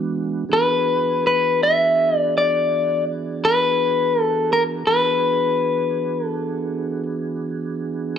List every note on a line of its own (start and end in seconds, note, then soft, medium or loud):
0.00 0.44 E3 medium
0.00 0.45 G#3 medium
0.00 0.45 B3 medium
0.00 0.45 D4 medium
0.00 0.45 F#4 medium
0.49 4.84 E3 medium
0.49 4.84 B3 medium
0.49 4.83 D4 medium
0.49 4.84 F#4 medium
0.49 4.84 G#4 medium
0.53 1.26 B4 medium
1.27 1.62 B4 medium
1.63 2.17 E5 medium
2.17 2.36 D5 medium
2.38 3.04 D5 medium
3.45 4.22 B4 loud
4.22 4.52 A4 loud
4.53 4.62 A#4 medium
4.87 8.18 E3 medium
4.87 8.18 B3 medium
4.87 8.18 D4 medium
4.87 8.18 F#4 medium
4.87 8.18 G#4 medium
4.87 6.27 B4 medium
6.27 7.03 A4 medium